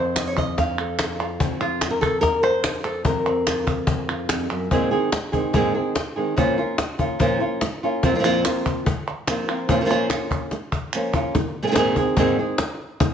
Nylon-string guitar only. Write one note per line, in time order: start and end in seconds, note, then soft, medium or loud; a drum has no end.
0.00 1.41 F2 medium
0.00 0.58 C5 medium
0.17 0.27 D#5 medium
0.27 0.37 C#5 medium
0.38 0.58 D#5 loud
0.58 1.20 F5 loud
0.80 1.39 A4 soft
1.20 1.61 F4 soft
1.42 3.05 F2 medium
1.61 1.90 F4 loud
1.90 2.01 A#4 loud
2.01 2.21 A4 loud
2.21 2.43 A#4 loud
2.43 2.84 C5 loud
2.84 3.05 A4 loud
3.05 4.29 F2 medium
3.05 4.71 A#4 loud
3.27 4.70 C4 soft
3.48 3.67 F4 medium
3.68 4.09 F4 soft
4.10 4.69 F4 medium
4.30 4.51 F2 medium
4.51 4.71 F#2 medium
4.71 4.91 G#2 medium
4.71 4.92 A#2 medium
4.71 4.91 D#3 medium
4.71 4.91 G#3 medium
4.71 4.90 C4 medium
4.71 4.90 G#4 medium
4.91 5.11 D#3 soft
4.91 5.12 G#3 soft
4.91 5.11 C4 medium
4.91 5.11 G#4 medium
5.12 muted nylon-string guitar stroke medium
5.32 5.53 D#3 soft
5.32 5.53 G#3 medium
5.32 5.53 C4 medium
5.32 5.53 G#4 medium
5.53 5.74 G#2 medium
5.53 5.74 A#2 medium
5.53 5.74 D#3 medium
5.53 5.74 G#3 loud
5.53 5.74 C4 medium
5.53 5.73 G#4 loud
5.75 5.94 D#3 soft
5.75 5.94 G#3 medium
5.75 5.95 C4 medium
5.75 5.95 G#4 medium
5.95 muted nylon-string guitar stroke medium
6.16 6.36 D#3 soft
6.16 6.37 G#3 soft
6.16 6.37 C4 medium
6.16 6.36 G#4 medium
6.36 6.57 A#2 medium
6.36 6.57 F3 medium
6.36 6.57 A#3 medium
6.36 6.57 C#4 medium
6.36 6.57 F4 medium
6.58 6.77 A#3 soft
6.58 6.78 C#4 medium
6.58 6.78 F4 medium
6.78 muted nylon-string guitar stroke medium
6.99 7.19 A#3 soft
6.99 7.19 C#4 medium
6.99 7.19 F4 medium
7.19 7.40 A#2 medium
7.19 7.40 F3 loud
7.19 7.40 A#3 medium
7.19 7.40 C#4 medium
7.19 7.39 F4 loud
7.40 7.61 A#3 soft
7.40 7.61 C#4 medium
7.40 7.61 F4 medium
7.62 muted nylon-string guitar stroke medium
7.83 8.03 A#3 medium
7.83 8.03 C#4 medium
7.83 8.03 F4 medium
8.03 8.22 F2 medium
8.03 8.14 A#2 medium
8.03 8.14 F3 medium
8.03 8.14 A#3 medium
8.03 8.15 C4 medium
8.03 8.14 F4 medium
8.15 8.18 A#2 medium
8.15 8.18 F3 medium
8.15 8.19 A#3 medium
8.15 8.19 C4 medium
8.15 8.20 F4 medium
8.19 8.23 A#2 medium
8.19 8.23 F3 medium
8.19 8.24 A#3 medium
8.19 8.23 C4 medium
8.19 8.24 F4 medium
8.24 8.44 F2 medium
8.24 8.44 A#2 medium
8.24 8.44 F3 medium
8.24 8.44 A#3 loud
8.24 8.44 C4 loud
8.24 8.43 F4 medium
8.44 8.85 F3 soft
8.44 8.86 A#3 soft
8.44 8.86 C4 medium
8.44 8.85 F4 medium
8.86 muted nylon-string guitar stroke medium
9.27 9.47 F3 medium
9.27 9.48 A#3 medium
9.27 9.48 C4 medium
9.27 9.47 F4 medium
9.48 9.68 F3 medium
9.48 9.68 A#3 soft
9.48 9.68 C4 medium
9.48 9.68 F4 medium
9.69 9.88 A#2 medium
9.69 9.80 F3 medium
9.69 9.80 A#3 medium
9.69 9.80 C#4 loud
9.69 9.81 F4 medium
9.81 9.84 F3 medium
9.81 9.85 A#3 medium
9.81 9.85 C#4 medium
9.81 9.86 F4 medium
9.85 9.89 F3 medium
9.85 9.89 A#3 medium
9.85 9.90 C#4 medium
9.85 9.90 F4 medium
9.89 10.09 A#2 medium
9.89 10.10 F3 medium
9.89 10.10 A#3 medium
9.89 10.09 C#4 loud
9.89 10.08 F4 medium
10.09 10.51 A#3 soft
10.09 10.51 C#4 soft
10.09 10.50 F4 medium
10.52 muted nylon-string guitar stroke medium
10.94 11.13 F3 medium
10.94 11.14 A#3 medium
10.94 11.14 C#4 medium
10.94 11.13 F4 medium
11.14 11.35 A#3 soft
11.14 11.34 C#4 medium
11.14 11.34 F4 medium
11.35 muted nylon-string guitar stroke medium
11.63 11.66 A#2 medium
11.63 11.66 D#3 medium
11.63 11.66 G#3 medium
11.63 11.66 C4 medium
11.63 11.67 G#4 medium
11.67 11.70 A#2 medium
11.67 11.71 D#3 medium
11.67 11.71 G#3 medium
11.67 11.71 C4 medium
11.67 11.72 G#4 medium
11.71 11.75 A#2 medium
11.71 11.75 D#3 medium
11.71 11.76 G#3 medium
11.71 11.76 C4 medium
11.71 11.76 G#4 medium
11.76 11.96 G#2 loud
11.76 11.96 A#2 loud
11.76 11.96 D#3 medium
11.76 11.96 G#3 loud
11.76 11.97 C4 medium
11.76 11.96 G#4 medium
11.98 12.17 D#3 soft
11.98 12.17 G#3 medium
11.98 12.17 C4 medium
11.98 12.17 G#4 medium
12.17 12.37 G#2 loud
12.17 12.37 A#2 loud
12.17 12.37 D#3 loud
12.17 12.38 G#3 loud
12.17 12.38 C4 loud
12.17 12.38 G#4 loud
12.39 12.58 D#3 soft
12.39 12.58 G#3 medium
12.39 12.58 C4 medium
12.39 12.58 G#4 medium
12.59 muted nylon-string guitar stroke medium
13.00 muted nylon-string guitar stroke medium